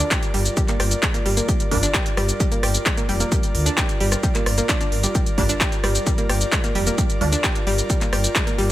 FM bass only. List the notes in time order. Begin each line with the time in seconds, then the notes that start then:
0.34 G1
0.80 G1
1.26 G1
1.71 G1
2.17 G1
2.63 G1
3.09 F1
3.55 D2
4.00 G1
4.46 G1
4.92 G1
5.38 G1
5.84 G1
6.29 G1
6.75 F1
7.21 D2
7.67 G1
8.13 G1
8.58 G1